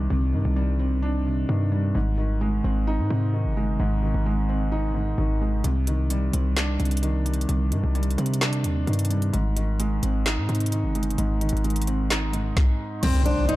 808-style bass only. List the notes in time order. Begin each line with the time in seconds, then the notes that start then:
0.10 C2
0.33 G2
0.45 C2
1.49 G2
1.95 G#1
2.64 G#1
2.99 G#2
3.10 G#2
3.45 G1
3.80 G#1
4.14 G#1
5.18 G#1
5.64 C2
6.34 C2
6.80 C2
7.49 C2
7.72 G2
7.84 C2
8.18 C3
8.64 D#2
8.87 G2
9.34 G#1
10.03 G#1
10.37 G#2
10.49 G#2
10.84 G1
11.18 G#1
11.53 G#1
13.03 C2